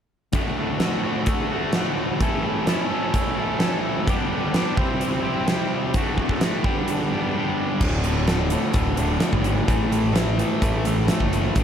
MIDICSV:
0, 0, Header, 1, 4, 480
1, 0, Start_track
1, 0, Key_signature, 2, "major"
1, 0, Tempo, 468019
1, 342, Time_signature, 4, 2, 24, 8
1, 11933, End_track
2, 0, Start_track
2, 0, Title_t, "Distorted electric guitar"
2, 0, Program_c, 0, 30
2, 335, Note_on_c, 0, 38, 74
2, 339, Note_on_c, 0, 45, 84
2, 349, Note_on_c, 0, 50, 78
2, 358, Note_on_c, 0, 57, 85
2, 364, Note_on_c, 0, 66, 79
2, 572, Note_off_c, 0, 66, 0
2, 585, Note_on_c, 0, 66, 58
2, 598, Note_off_c, 0, 57, 0
2, 599, Note_off_c, 0, 50, 0
2, 602, Note_on_c, 0, 57, 55
2, 611, Note_on_c, 0, 50, 58
2, 817, Note_off_c, 0, 38, 0
2, 820, Note_off_c, 0, 45, 0
2, 832, Note_off_c, 0, 50, 0
2, 835, Note_on_c, 0, 45, 57
2, 844, Note_on_c, 0, 50, 66
2, 845, Note_off_c, 0, 57, 0
2, 845, Note_off_c, 0, 66, 0
2, 850, Note_on_c, 0, 57, 62
2, 858, Note_on_c, 0, 66, 74
2, 1050, Note_off_c, 0, 66, 0
2, 1062, Note_on_c, 0, 66, 62
2, 1063, Note_off_c, 0, 57, 0
2, 1067, Note_on_c, 0, 57, 54
2, 1071, Note_off_c, 0, 50, 0
2, 1083, Note_on_c, 0, 50, 48
2, 1307, Note_off_c, 0, 45, 0
2, 1535, Note_off_c, 0, 66, 0
2, 1547, Note_off_c, 0, 57, 0
2, 1547, Note_on_c, 0, 66, 58
2, 1560, Note_on_c, 0, 57, 51
2, 1563, Note_off_c, 0, 50, 0
2, 1576, Note_on_c, 0, 50, 44
2, 1777, Note_on_c, 0, 38, 66
2, 1782, Note_off_c, 0, 50, 0
2, 1784, Note_on_c, 0, 45, 70
2, 1785, Note_off_c, 0, 57, 0
2, 1794, Note_on_c, 0, 50, 70
2, 1797, Note_off_c, 0, 66, 0
2, 1798, Note_on_c, 0, 57, 81
2, 1810, Note_on_c, 0, 66, 76
2, 2243, Note_off_c, 0, 38, 0
2, 2247, Note_off_c, 0, 45, 0
2, 2252, Note_off_c, 0, 50, 0
2, 2253, Note_off_c, 0, 57, 0
2, 2259, Note_off_c, 0, 66, 0
2, 2268, Note_on_c, 0, 45, 82
2, 2271, Note_on_c, 0, 57, 82
2, 2272, Note_on_c, 0, 52, 79
2, 2282, Note_on_c, 0, 64, 85
2, 2283, Note_on_c, 0, 61, 84
2, 2292, Note_on_c, 0, 69, 94
2, 2489, Note_off_c, 0, 69, 0
2, 2501, Note_on_c, 0, 69, 64
2, 2506, Note_off_c, 0, 64, 0
2, 2508, Note_off_c, 0, 61, 0
2, 2519, Note_on_c, 0, 64, 65
2, 2521, Note_on_c, 0, 61, 60
2, 2524, Note_off_c, 0, 57, 0
2, 2536, Note_on_c, 0, 57, 55
2, 2722, Note_off_c, 0, 57, 0
2, 2734, Note_off_c, 0, 61, 0
2, 2734, Note_on_c, 0, 57, 55
2, 2742, Note_off_c, 0, 45, 0
2, 2744, Note_off_c, 0, 52, 0
2, 2745, Note_off_c, 0, 64, 0
2, 2747, Note_off_c, 0, 69, 0
2, 2747, Note_on_c, 0, 61, 62
2, 2757, Note_on_c, 0, 64, 74
2, 2760, Note_on_c, 0, 69, 71
2, 2965, Note_off_c, 0, 69, 0
2, 2977, Note_on_c, 0, 69, 56
2, 2979, Note_off_c, 0, 61, 0
2, 2983, Note_off_c, 0, 64, 0
2, 2991, Note_on_c, 0, 61, 52
2, 2995, Note_on_c, 0, 64, 51
2, 2996, Note_off_c, 0, 57, 0
2, 3009, Note_on_c, 0, 57, 53
2, 3449, Note_off_c, 0, 69, 0
2, 3453, Note_off_c, 0, 64, 0
2, 3461, Note_on_c, 0, 69, 59
2, 3465, Note_on_c, 0, 64, 51
2, 3469, Note_off_c, 0, 61, 0
2, 3475, Note_off_c, 0, 57, 0
2, 3482, Note_on_c, 0, 61, 56
2, 3487, Note_on_c, 0, 57, 46
2, 3689, Note_off_c, 0, 57, 0
2, 3690, Note_on_c, 0, 45, 65
2, 3692, Note_off_c, 0, 61, 0
2, 3695, Note_on_c, 0, 52, 73
2, 3699, Note_off_c, 0, 64, 0
2, 3701, Note_off_c, 0, 69, 0
2, 3701, Note_on_c, 0, 57, 65
2, 3705, Note_on_c, 0, 61, 71
2, 3712, Note_on_c, 0, 64, 65
2, 3713, Note_on_c, 0, 69, 86
2, 4159, Note_off_c, 0, 45, 0
2, 4161, Note_off_c, 0, 52, 0
2, 4164, Note_off_c, 0, 57, 0
2, 4166, Note_off_c, 0, 61, 0
2, 4169, Note_off_c, 0, 64, 0
2, 4170, Note_off_c, 0, 69, 0
2, 4173, Note_on_c, 0, 50, 83
2, 4176, Note_on_c, 0, 43, 74
2, 4186, Note_on_c, 0, 55, 81
2, 4188, Note_on_c, 0, 59, 85
2, 4194, Note_on_c, 0, 62, 91
2, 4199, Note_on_c, 0, 67, 90
2, 4411, Note_off_c, 0, 67, 0
2, 4422, Note_off_c, 0, 62, 0
2, 4423, Note_on_c, 0, 67, 66
2, 4433, Note_off_c, 0, 59, 0
2, 4434, Note_off_c, 0, 55, 0
2, 4434, Note_on_c, 0, 62, 63
2, 4445, Note_on_c, 0, 59, 62
2, 4447, Note_on_c, 0, 55, 50
2, 4640, Note_off_c, 0, 55, 0
2, 4652, Note_on_c, 0, 55, 74
2, 4655, Note_off_c, 0, 50, 0
2, 4656, Note_off_c, 0, 43, 0
2, 4658, Note_off_c, 0, 59, 0
2, 4659, Note_off_c, 0, 62, 0
2, 4670, Note_on_c, 0, 59, 73
2, 4671, Note_off_c, 0, 67, 0
2, 4671, Note_on_c, 0, 62, 80
2, 4684, Note_on_c, 0, 67, 73
2, 4880, Note_off_c, 0, 55, 0
2, 4889, Note_off_c, 0, 59, 0
2, 4889, Note_off_c, 0, 62, 0
2, 4892, Note_off_c, 0, 67, 0
2, 4896, Note_on_c, 0, 72, 80
2, 4906, Note_on_c, 0, 67, 68
2, 4914, Note_on_c, 0, 60, 69
2, 4918, Note_on_c, 0, 64, 72
2, 4924, Note_on_c, 0, 55, 63
2, 4929, Note_on_c, 0, 48, 51
2, 5352, Note_off_c, 0, 72, 0
2, 5364, Note_on_c, 0, 72, 57
2, 5367, Note_off_c, 0, 67, 0
2, 5375, Note_off_c, 0, 64, 0
2, 5380, Note_off_c, 0, 60, 0
2, 5380, Note_on_c, 0, 67, 49
2, 5387, Note_on_c, 0, 64, 55
2, 5393, Note_on_c, 0, 60, 49
2, 5591, Note_off_c, 0, 48, 0
2, 5597, Note_off_c, 0, 55, 0
2, 5601, Note_off_c, 0, 60, 0
2, 5603, Note_off_c, 0, 64, 0
2, 5604, Note_on_c, 0, 48, 69
2, 5609, Note_on_c, 0, 55, 84
2, 5613, Note_off_c, 0, 67, 0
2, 5613, Note_on_c, 0, 60, 69
2, 5616, Note_on_c, 0, 64, 70
2, 5618, Note_off_c, 0, 72, 0
2, 5625, Note_on_c, 0, 67, 77
2, 5631, Note_on_c, 0, 72, 67
2, 6075, Note_off_c, 0, 48, 0
2, 6078, Note_off_c, 0, 55, 0
2, 6080, Note_off_c, 0, 60, 0
2, 6081, Note_off_c, 0, 64, 0
2, 6086, Note_off_c, 0, 67, 0
2, 6089, Note_off_c, 0, 72, 0
2, 6099, Note_on_c, 0, 38, 92
2, 6112, Note_on_c, 0, 45, 82
2, 6117, Note_on_c, 0, 50, 84
2, 6120, Note_on_c, 0, 57, 89
2, 6127, Note_on_c, 0, 66, 87
2, 6326, Note_off_c, 0, 66, 0
2, 6338, Note_on_c, 0, 66, 62
2, 6339, Note_off_c, 0, 57, 0
2, 6351, Note_on_c, 0, 57, 57
2, 6356, Note_off_c, 0, 50, 0
2, 6368, Note_on_c, 0, 50, 52
2, 6568, Note_off_c, 0, 45, 0
2, 6578, Note_off_c, 0, 38, 0
2, 6580, Note_off_c, 0, 50, 0
2, 6581, Note_on_c, 0, 45, 67
2, 6587, Note_off_c, 0, 57, 0
2, 6592, Note_on_c, 0, 50, 67
2, 6599, Note_on_c, 0, 57, 64
2, 6606, Note_off_c, 0, 66, 0
2, 6619, Note_on_c, 0, 66, 67
2, 6804, Note_off_c, 0, 45, 0
2, 6810, Note_off_c, 0, 50, 0
2, 6813, Note_off_c, 0, 57, 0
2, 6820, Note_off_c, 0, 66, 0
2, 6824, Note_on_c, 0, 67, 67
2, 6832, Note_on_c, 0, 62, 74
2, 6840, Note_on_c, 0, 55, 65
2, 6845, Note_on_c, 0, 59, 60
2, 6848, Note_on_c, 0, 50, 71
2, 6856, Note_on_c, 0, 43, 62
2, 7282, Note_off_c, 0, 67, 0
2, 7295, Note_on_c, 0, 67, 63
2, 7298, Note_off_c, 0, 62, 0
2, 7303, Note_off_c, 0, 59, 0
2, 7308, Note_off_c, 0, 55, 0
2, 7310, Note_on_c, 0, 62, 59
2, 7315, Note_on_c, 0, 59, 48
2, 7321, Note_on_c, 0, 55, 51
2, 7530, Note_off_c, 0, 43, 0
2, 7535, Note_off_c, 0, 50, 0
2, 7539, Note_off_c, 0, 55, 0
2, 7542, Note_on_c, 0, 43, 74
2, 7546, Note_off_c, 0, 59, 0
2, 7548, Note_on_c, 0, 50, 70
2, 7550, Note_off_c, 0, 62, 0
2, 7551, Note_off_c, 0, 67, 0
2, 7552, Note_on_c, 0, 55, 65
2, 7558, Note_on_c, 0, 59, 74
2, 7562, Note_on_c, 0, 62, 71
2, 7564, Note_on_c, 0, 67, 72
2, 8005, Note_off_c, 0, 43, 0
2, 8008, Note_off_c, 0, 50, 0
2, 8010, Note_off_c, 0, 55, 0
2, 8013, Note_off_c, 0, 59, 0
2, 8015, Note_off_c, 0, 62, 0
2, 8016, Note_off_c, 0, 67, 0
2, 8023, Note_on_c, 0, 38, 90
2, 8024, Note_on_c, 0, 45, 105
2, 8034, Note_on_c, 0, 50, 101
2, 8246, Note_off_c, 0, 38, 0
2, 8249, Note_off_c, 0, 45, 0
2, 8259, Note_off_c, 0, 50, 0
2, 8259, Note_on_c, 0, 38, 86
2, 8261, Note_on_c, 0, 45, 79
2, 8272, Note_on_c, 0, 50, 79
2, 8489, Note_off_c, 0, 38, 0
2, 8497, Note_off_c, 0, 45, 0
2, 8501, Note_off_c, 0, 50, 0
2, 8502, Note_on_c, 0, 38, 82
2, 8509, Note_on_c, 0, 45, 98
2, 8514, Note_on_c, 0, 50, 104
2, 8736, Note_off_c, 0, 38, 0
2, 8741, Note_off_c, 0, 45, 0
2, 8745, Note_off_c, 0, 50, 0
2, 8748, Note_on_c, 0, 38, 67
2, 8753, Note_on_c, 0, 45, 76
2, 8757, Note_on_c, 0, 50, 75
2, 8948, Note_off_c, 0, 38, 0
2, 8956, Note_off_c, 0, 45, 0
2, 8959, Note_off_c, 0, 50, 0
2, 8961, Note_on_c, 0, 38, 85
2, 8968, Note_on_c, 0, 45, 88
2, 8971, Note_on_c, 0, 50, 99
2, 9191, Note_off_c, 0, 38, 0
2, 9203, Note_off_c, 0, 45, 0
2, 9203, Note_on_c, 0, 38, 67
2, 9205, Note_off_c, 0, 50, 0
2, 9215, Note_on_c, 0, 45, 62
2, 9218, Note_on_c, 0, 50, 81
2, 9423, Note_off_c, 0, 38, 0
2, 9435, Note_off_c, 0, 50, 0
2, 9435, Note_on_c, 0, 38, 75
2, 9436, Note_off_c, 0, 45, 0
2, 9447, Note_on_c, 0, 50, 79
2, 9448, Note_on_c, 0, 45, 76
2, 9662, Note_off_c, 0, 38, 0
2, 9665, Note_off_c, 0, 45, 0
2, 9674, Note_on_c, 0, 38, 76
2, 9675, Note_off_c, 0, 50, 0
2, 9678, Note_on_c, 0, 45, 66
2, 9687, Note_on_c, 0, 50, 80
2, 9903, Note_off_c, 0, 45, 0
2, 9911, Note_off_c, 0, 38, 0
2, 9915, Note_on_c, 0, 45, 92
2, 9918, Note_off_c, 0, 50, 0
2, 9919, Note_on_c, 0, 52, 85
2, 9928, Note_on_c, 0, 57, 88
2, 10149, Note_off_c, 0, 45, 0
2, 10156, Note_off_c, 0, 52, 0
2, 10161, Note_on_c, 0, 45, 76
2, 10163, Note_off_c, 0, 57, 0
2, 10168, Note_on_c, 0, 52, 77
2, 10175, Note_on_c, 0, 57, 80
2, 10379, Note_off_c, 0, 45, 0
2, 10384, Note_off_c, 0, 52, 0
2, 10391, Note_on_c, 0, 45, 81
2, 10397, Note_on_c, 0, 52, 101
2, 10398, Note_off_c, 0, 57, 0
2, 10411, Note_on_c, 0, 57, 96
2, 10636, Note_off_c, 0, 45, 0
2, 10637, Note_off_c, 0, 52, 0
2, 10647, Note_off_c, 0, 57, 0
2, 10648, Note_on_c, 0, 45, 69
2, 10649, Note_on_c, 0, 52, 76
2, 10659, Note_on_c, 0, 57, 87
2, 10876, Note_off_c, 0, 45, 0
2, 10887, Note_off_c, 0, 52, 0
2, 10888, Note_off_c, 0, 57, 0
2, 10889, Note_on_c, 0, 45, 87
2, 10900, Note_on_c, 0, 52, 90
2, 10900, Note_on_c, 0, 57, 116
2, 11121, Note_off_c, 0, 45, 0
2, 11133, Note_off_c, 0, 52, 0
2, 11134, Note_on_c, 0, 45, 69
2, 11137, Note_off_c, 0, 57, 0
2, 11145, Note_on_c, 0, 52, 72
2, 11149, Note_on_c, 0, 57, 71
2, 11378, Note_off_c, 0, 45, 0
2, 11389, Note_off_c, 0, 52, 0
2, 11390, Note_on_c, 0, 45, 66
2, 11391, Note_off_c, 0, 57, 0
2, 11401, Note_on_c, 0, 52, 71
2, 11403, Note_on_c, 0, 57, 85
2, 11619, Note_off_c, 0, 45, 0
2, 11622, Note_off_c, 0, 52, 0
2, 11631, Note_on_c, 0, 45, 79
2, 11634, Note_off_c, 0, 57, 0
2, 11635, Note_on_c, 0, 52, 70
2, 11647, Note_on_c, 0, 57, 81
2, 11850, Note_off_c, 0, 45, 0
2, 11852, Note_off_c, 0, 52, 0
2, 11858, Note_off_c, 0, 57, 0
2, 11874, Note_on_c, 0, 43, 92
2, 11876, Note_on_c, 0, 50, 94
2, 11884, Note_on_c, 0, 55, 89
2, 11933, Note_off_c, 0, 43, 0
2, 11933, Note_off_c, 0, 50, 0
2, 11933, Note_off_c, 0, 55, 0
2, 11933, End_track
3, 0, Start_track
3, 0, Title_t, "Picked electric bass"
3, 0, Program_c, 1, 34
3, 8004, Note_on_c, 1, 26, 100
3, 8768, Note_off_c, 1, 26, 0
3, 8967, Note_on_c, 1, 26, 84
3, 9161, Note_off_c, 1, 26, 0
3, 9214, Note_on_c, 1, 26, 84
3, 9405, Note_off_c, 1, 26, 0
3, 9567, Note_on_c, 1, 32, 80
3, 9855, Note_off_c, 1, 32, 0
3, 9927, Note_on_c, 1, 33, 93
3, 10690, Note_off_c, 1, 33, 0
3, 10895, Note_on_c, 1, 33, 96
3, 11371, Note_off_c, 1, 33, 0
3, 11494, Note_on_c, 1, 30, 73
3, 11780, Note_off_c, 1, 30, 0
3, 11859, Note_on_c, 1, 31, 93
3, 11933, Note_off_c, 1, 31, 0
3, 11933, End_track
4, 0, Start_track
4, 0, Title_t, "Drums"
4, 334, Note_on_c, 9, 42, 47
4, 342, Note_on_c, 9, 36, 90
4, 437, Note_off_c, 9, 42, 0
4, 445, Note_off_c, 9, 36, 0
4, 820, Note_on_c, 9, 42, 53
4, 823, Note_on_c, 9, 38, 93
4, 923, Note_off_c, 9, 42, 0
4, 926, Note_off_c, 9, 38, 0
4, 1294, Note_on_c, 9, 42, 55
4, 1302, Note_on_c, 9, 36, 92
4, 1397, Note_off_c, 9, 42, 0
4, 1404, Note_off_c, 9, 36, 0
4, 1770, Note_on_c, 9, 42, 60
4, 1773, Note_on_c, 9, 38, 95
4, 1872, Note_off_c, 9, 42, 0
4, 1875, Note_off_c, 9, 38, 0
4, 2261, Note_on_c, 9, 42, 50
4, 2262, Note_on_c, 9, 36, 86
4, 2363, Note_off_c, 9, 42, 0
4, 2365, Note_off_c, 9, 36, 0
4, 2738, Note_on_c, 9, 42, 55
4, 2741, Note_on_c, 9, 38, 97
4, 2841, Note_off_c, 9, 42, 0
4, 2844, Note_off_c, 9, 38, 0
4, 3218, Note_on_c, 9, 42, 57
4, 3220, Note_on_c, 9, 36, 92
4, 3321, Note_off_c, 9, 42, 0
4, 3322, Note_off_c, 9, 36, 0
4, 3690, Note_on_c, 9, 42, 50
4, 3693, Note_on_c, 9, 38, 100
4, 3793, Note_off_c, 9, 42, 0
4, 3796, Note_off_c, 9, 38, 0
4, 4179, Note_on_c, 9, 36, 92
4, 4179, Note_on_c, 9, 42, 49
4, 4281, Note_off_c, 9, 42, 0
4, 4282, Note_off_c, 9, 36, 0
4, 4658, Note_on_c, 9, 42, 50
4, 4661, Note_on_c, 9, 38, 95
4, 4760, Note_off_c, 9, 42, 0
4, 4763, Note_off_c, 9, 38, 0
4, 4896, Note_on_c, 9, 36, 94
4, 4999, Note_off_c, 9, 36, 0
4, 5137, Note_on_c, 9, 42, 50
4, 5239, Note_off_c, 9, 42, 0
4, 5616, Note_on_c, 9, 42, 59
4, 5619, Note_on_c, 9, 38, 96
4, 5719, Note_off_c, 9, 42, 0
4, 5722, Note_off_c, 9, 38, 0
4, 6091, Note_on_c, 9, 42, 56
4, 6096, Note_on_c, 9, 36, 92
4, 6194, Note_off_c, 9, 42, 0
4, 6198, Note_off_c, 9, 36, 0
4, 6335, Note_on_c, 9, 36, 62
4, 6437, Note_off_c, 9, 36, 0
4, 6454, Note_on_c, 9, 36, 66
4, 6557, Note_off_c, 9, 36, 0
4, 6574, Note_on_c, 9, 42, 60
4, 6577, Note_on_c, 9, 38, 100
4, 6676, Note_off_c, 9, 42, 0
4, 6679, Note_off_c, 9, 38, 0
4, 6813, Note_on_c, 9, 36, 89
4, 6916, Note_off_c, 9, 36, 0
4, 7053, Note_on_c, 9, 42, 55
4, 7156, Note_off_c, 9, 42, 0
4, 8006, Note_on_c, 9, 49, 89
4, 8009, Note_on_c, 9, 36, 101
4, 8109, Note_off_c, 9, 49, 0
4, 8112, Note_off_c, 9, 36, 0
4, 8243, Note_on_c, 9, 42, 53
4, 8346, Note_off_c, 9, 42, 0
4, 8486, Note_on_c, 9, 42, 73
4, 8489, Note_on_c, 9, 38, 95
4, 8589, Note_off_c, 9, 42, 0
4, 8592, Note_off_c, 9, 38, 0
4, 8719, Note_on_c, 9, 42, 64
4, 8822, Note_off_c, 9, 42, 0
4, 8960, Note_on_c, 9, 42, 84
4, 8966, Note_on_c, 9, 36, 109
4, 9062, Note_off_c, 9, 42, 0
4, 9068, Note_off_c, 9, 36, 0
4, 9203, Note_on_c, 9, 42, 57
4, 9305, Note_off_c, 9, 42, 0
4, 9438, Note_on_c, 9, 42, 79
4, 9441, Note_on_c, 9, 38, 102
4, 9540, Note_off_c, 9, 42, 0
4, 9543, Note_off_c, 9, 38, 0
4, 9567, Note_on_c, 9, 36, 73
4, 9669, Note_off_c, 9, 36, 0
4, 9685, Note_on_c, 9, 42, 60
4, 9787, Note_off_c, 9, 42, 0
4, 9930, Note_on_c, 9, 36, 97
4, 9931, Note_on_c, 9, 42, 68
4, 10033, Note_off_c, 9, 36, 0
4, 10034, Note_off_c, 9, 42, 0
4, 10177, Note_on_c, 9, 42, 55
4, 10280, Note_off_c, 9, 42, 0
4, 10415, Note_on_c, 9, 42, 75
4, 10418, Note_on_c, 9, 38, 107
4, 10517, Note_off_c, 9, 42, 0
4, 10520, Note_off_c, 9, 38, 0
4, 10658, Note_on_c, 9, 42, 55
4, 10760, Note_off_c, 9, 42, 0
4, 10891, Note_on_c, 9, 42, 71
4, 10892, Note_on_c, 9, 36, 106
4, 10994, Note_off_c, 9, 36, 0
4, 10994, Note_off_c, 9, 42, 0
4, 11130, Note_on_c, 9, 42, 55
4, 11232, Note_off_c, 9, 42, 0
4, 11364, Note_on_c, 9, 42, 73
4, 11367, Note_on_c, 9, 38, 102
4, 11467, Note_off_c, 9, 42, 0
4, 11470, Note_off_c, 9, 38, 0
4, 11490, Note_on_c, 9, 36, 68
4, 11593, Note_off_c, 9, 36, 0
4, 11618, Note_on_c, 9, 42, 57
4, 11721, Note_off_c, 9, 42, 0
4, 11851, Note_on_c, 9, 42, 73
4, 11855, Note_on_c, 9, 36, 100
4, 11933, Note_off_c, 9, 36, 0
4, 11933, Note_off_c, 9, 42, 0
4, 11933, End_track
0, 0, End_of_file